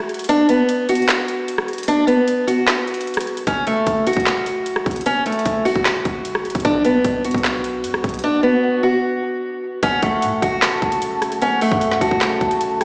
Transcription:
Already playing: steel-string acoustic guitar F#4
0.09 closed hi-hat
0.14 closed hi-hat
0.19 closed hi-hat
0.24 closed hi-hat
0.29 steel-string acoustic guitar D4, closed hi-hat
0.49 steel-string acoustic guitar B3, closed hi-hat
0.69 closed hi-hat
0.89 steel-string acoustic guitar F#4, closed hi-hat
0.95 closed hi-hat
1.02 closed hi-hat
1.09 snare, clap, closed hi-hat
1.28 closed hi-hat
1.48 closed hi-hat
1.58 cross-stick
1.68 closed hi-hat
1.73 closed hi-hat
1.78 closed hi-hat
1.83 closed hi-hat
1.88 steel-string acoustic guitar D4, closed hi-hat
2.07 steel-string acoustic guitar B3, closed hi-hat
2.28 closed hi-hat
2.47 steel-string acoustic guitar F#4, closed hi-hat
2.67 snare, clap, closed hi-hat
2.87 closed hi-hat
2.94 closed hi-hat
3.01 closed hi-hat
3.07 closed hi-hat
3.14 cross-stick, closed hi-hat
3.21 closed hi-hat
3.27 closed hi-hat
3.37 closed hi-hat
3.47 808-style bass F#1, steel-string acoustic guitar C#4, kick, closed hi-hat
3.67 steel-string acoustic guitar A3, closed hi-hat
3.87 808-style bass F#1, kick, closed hi-hat
4.07 steel-string acoustic guitar F#4, closed hi-hat
4.13 808-style bass F#1, kick, closed hi-hat
4.20 closed hi-hat
4.26 snare, clap, closed hi-hat
4.46 closed hi-hat
4.66 closed hi-hat
4.76 cross-stick
4.86 808-style bass F#1, kick, closed hi-hat
4.91 closed hi-hat
4.96 closed hi-hat
5.01 closed hi-hat
5.06 steel-string acoustic guitar C#4, closed hi-hat
5.26 steel-string acoustic guitar A3, closed hi-hat
5.32 closed hi-hat
5.39 closed hi-hat
5.45 808-style bass F#1, kick, closed hi-hat
5.65 steel-string acoustic guitar F#4, open hi-hat
5.76 808-style bass F#1, kick
5.85 snare, clap, closed hi-hat
6.05 808-style bass F#1, kick, closed hi-hat
6.25 808-style bass G1, closed hi-hat
6.35 cross-stick
6.45 closed hi-hat
6.50 closed hi-hat
6.55 808-style bass F#1, kick, closed hi-hat
6.60 closed hi-hat
6.65 808-style bass B1, steel-string acoustic guitar D4, kick, closed hi-hat, swell
6.85 steel-string acoustic guitar B3, closed hi-hat
7.04 808-style bass B1, kick, closed hi-hat
7.24 808-style bass D2, steel-string acoustic guitar F#4, closed hi-hat
7.31 808-style bass B1, kick, closed hi-hat
7.38 closed hi-hat
7.44 snare, clap, closed hi-hat
7.64 closed hi-hat
7.84 808-style bass F#2, closed hi-hat
7.94 808-style bass B1, cross-stick
8.04 808-style bass B1, kick, closed hi-hat
8.09 closed hi-hat
8.14 closed hi-hat
8.19 closed hi-hat
8.24 steel-string acoustic guitar D4
8.43 steel-string acoustic guitar B3
8.83 steel-string acoustic guitar F#4
9.83 808-style bass F#1, ambient pad C#3 F#3 A3 F#4, steel-string acoustic guitar C#4, soft synth lead F#5, kick, closed hi-hat
10.02 808-style bass F#1, steel-string acoustic guitar A3, kick, closed hi-hat
10.22 808-style bass A2, closed hi-hat
10.32 808-style bass F#1
10.42 808-style bass F#1, steel-string acoustic guitar F#4, kick, closed hi-hat
10.62 soft synth lead A5, snare, clap, closed hi-hat
10.82 808-style bass F#1, kick, closed hi-hat
10.92 closed hi-hat
11.02 closed hi-hat
11.22 cross-stick, closed hi-hat
11.32 closed hi-hat
11.42 steel-string acoustic guitar C#4, soft synth lead F#5, closed hi-hat
11.52 808-style bass G1
11.61 steel-string acoustic guitar A3, open hi-hat
11.72 808-style bass F#2, kick
11.81 closed hi-hat
11.91 snare
12.01 808-style bass F#1, steel-string acoustic guitar F#4, soft synth lead A5, kick, closed hi-hat
12.11 808-style bass F#1, kick
12.21 snare, clap, closed hi-hat
12.41 808-style bass F#1, kick, closed hi-hat
12.51 closed hi-hat
12.61 closed hi-hat
12.71 808-style bass G1
12.81 soft synth lead G5, cross-stick, closed hi-hat

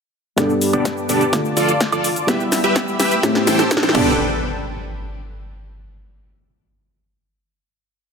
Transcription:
0.36 analog synth bass G1, felt piano G2 B3 D4 G4 A4, supersaw synth B3 D4 G4 A4 B4 D5 A5 D6, kick, snare, closed hi-hat, riser, cabasa
0.50 cabasa
0.61 open hi-hat, cabasa
0.73 analog synth bass G2, supersaw synth B3 D4 G4 A4 D5, closed hi-hat, cabasa, high woodblock
0.85 kick, snare, closed hi-hat, cabasa
0.97 cabasa
1.09 analog synth bass G1, supersaw synth B3 D4 G4 A4 D5, open hi-hat, cabasa
1.21 closed hi-hat, cabasa
1.32 felt piano D3 A3 D4 F4 A4, supersaw synth F4 D5, kick, snare, closed hi-hat, cabasa, high woodblock
1.45 cabasa
1.57 analog synth bass D2, supersaw synth F4 A4 D5, open hi-hat, cabasa
1.69 closed hi-hat, cabasa
1.81 kick, snare, closed hi-hat, cabasa
1.92 analog synth bass D2, supersaw synth F4 A4 D5, closed hi-hat, cabasa, high woodblock
2.04 open hi-hat, cabasa
2.16 closed hi-hat, cabasa
2.27 analog synth bass E2, felt piano G3 B3 E4 G4, supersaw synth G4 B4 E5 B5 E6, kick, snare, closed hi-hat, cabasa
2.40 cabasa
2.52 snare, open hi-hat, cabasa
2.64 analog synth bass E2, supersaw synth G4 B4 E5, closed hi-hat, cabasa
2.76 kick, snare, closed hi-hat, cabasa
2.88 cabasa
3.00 analog synth bass E2, supersaw synth G4 B4 E5, snare, open hi-hat, cabasa
3.11 closed hi-hat, cabasa
3.22 felt piano A2 A3 C4 E4 G4, supersaw synth C5 A5, kick, snare, closed hi-hat, cabasa
3.35 snare, cabasa
3.47 supersaw synth E4 G4 A4 C5 G5, snare, open hi-hat, cabasa
3.59 snare, closed hi-hat, cabasa
3.71 kick, snare, closed hi-hat, cabasa
3.77 snare
3.83 analog synth bass A2, supersaw synth E4 G4 A4 C5 G5, snare, closed hi-hat, cabasa
3.89 snare
3.93 analog synth bass G1, felt piano B3 D4 G4 A4, supersaw synth B3 D4 G4 A4 B4 D5 G5, kick, crash, impact

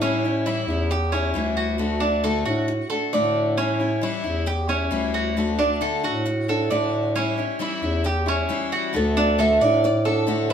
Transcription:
Already playing: bass clarinet A2
0.01 steel-string acoustic guitar E3 G3 C#4 E4, cuban tres C#4
0.24 steel-string acoustic guitar G3 C#4 E4
0.46 steel-string acoustic guitar E3 G3 C#4 E4, cuban tres E4
0.67 bass clarinet E2, steel-string acoustic guitar G3 C#4 E4
0.91 cuban tres G4, muted steel-string acoustic guitar stroke
1.12 steel-string acoustic guitar G3 C#4 E4, cuban tres C#4
1.34 bass clarinet D2, steel-string acoustic guitar E3 G3 C#4 E4
1.57 cuban tres F#4
1.78 steel-string acoustic guitar D3 A3 D4 F#4
2.00 steel-string acoustic guitar A3 D4 F#4, cuban tres D4
2.24 steel-string acoustic guitar D3 A3 D4 F#4, cuban tres A4
2.45 bass clarinet A2, steel-string acoustic guitar A3 D4 F#4, cuban tres F#4
2.68 muted steel-string acoustic guitar stroke
2.90 steel-string acoustic guitar A3 D4 F#4, cuban tres A4
3.13 bass clarinet A2, steel-string acoustic guitar D3 A3 D4 F#4, cuban tres D5
3.58 steel-string acoustic guitar E3 G3 C#4 E4, cuban tres C#4
3.80 steel-string acoustic guitar G3 C#4 E4
4.01 steel-string acoustic guitar E3 G3 C#4 E4, cuban tres E4
4.24 bass clarinet E2, steel-string acoustic guitar G3 C#4 E4
4.46 cuban tres G4, muted steel-string acoustic guitar stroke
4.68 steel-string acoustic guitar G3 C#4 E4, cuban tres C#4
4.91 bass clarinet D2, steel-string acoustic guitar E3 G3 C#4 E4
5.14 cuban tres F#4
5.37 steel-string acoustic guitar D3 A3 D4 F#4
5.59 steel-string acoustic guitar A3 D4 F#4, cuban tres D4
5.81 steel-string acoustic guitar D3 A3 D4 F#4, cuban tres A4
6.03 bass clarinet A2, steel-string acoustic guitar A3 D4 F#4, cuban tres F#4
6.25 muted steel-string acoustic guitar stroke
6.48 steel-string acoustic guitar A3 D4 F#4, cuban tres A4
6.70 bass clarinet A2, steel-string acoustic guitar D3 A3 D4 F#4, cuban tres D5
7.15 steel-string acoustic guitar E3 G3 C#4 E4, cuban tres C#4
7.38 steel-string acoustic guitar G3 C#4 E4
7.59 steel-string acoustic guitar E3 G3 C#4 E4, cuban tres E4
7.82 bass clarinet E2, steel-string acoustic guitar G3 C#4 E4
8.04 cuban tres G4, muted steel-string acoustic guitar stroke
8.26 steel-string acoustic guitar G3 C#4 E4, cuban tres C#4
8.49 steel-string acoustic guitar E3 G3 C#4 E4
8.72 cuban tres F#4
8.93 bass clarinet D2, steel-string acoustic guitar D3 A3 D4 F#4, nylon-string guitar A4
9.17 steel-string acoustic guitar A3 D4 F#4, cuban tres D4
9.38 steel-string acoustic guitar D3 A3 D4 F#4, cuban tres A4, nylon-string guitar E5
9.61 bass clarinet A2, steel-string acoustic guitar A3 D4 F#4, cuban tres D5
9.84 nylon-string guitar D5, muted steel-string acoustic guitar stroke
10.05 steel-string acoustic guitar A3 D4 F#4, cuban tres A4
10.27 bass clarinet A2, steel-string acoustic guitar D3 A3 D4 F#4
10.50 cuban tres E4, nylon-string guitar B4

